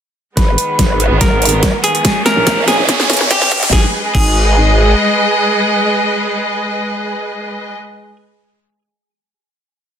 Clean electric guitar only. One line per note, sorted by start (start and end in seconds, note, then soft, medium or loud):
0.37 1.13 B4 medium
1.21 1.76 A#4 medium
1.84 2.21 G#4 medium
2.26 2.63 A#4 medium
2.68 3.23 G#4 medium
3.31 3.68 G4 medium
3.73 3.85 G#4 medium
4.15 8.16 G#4 medium